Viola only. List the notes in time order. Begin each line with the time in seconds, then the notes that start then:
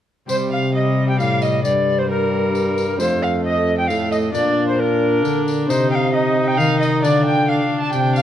0.29 G3
0.75 G3
1.65 G3
2.09 G3
3.00 A3
3.90 A3
4.34 D4
4.79 D4
5.70 D#4
6.14 D#4
7.03 D4
7.48 D4